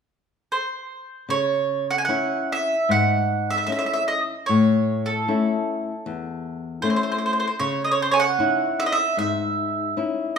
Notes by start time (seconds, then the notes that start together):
0.52 C5
1.29 C#3 C#5
1.91 F#5
1.98 G#5
2.05 C#4 F#5
2.09 E4
2.52 E5
2.89 G#2 F#5
3.50 E5
3.58 E5
3.67 C#4 D#4 E4 E5
3.72 E5
3.79 E5
3.86 E5
3.93 E5
4.08 D#5
4.46 A2 C#5
5.06 A4
5.28 A3 C#4 E4
6.06 E2
6.82 A3 C#4 E4 C5
6.90 C5
6.96 C5
7.03 C5
7.12 C5
7.18 C5
7.26 C5
7.33 C5
7.40 C5
7.47 C5
7.59 C#3 C#5
7.84 D#5
7.91 C#5
8.02 C5
8.11 C#5 G#5
8.20 F#5
8.39 C#4 D#4 E4
8.80 E5
8.86 D#5
8.92 E5
9.17 G#2 E5
9.97 C#4 D#4 E4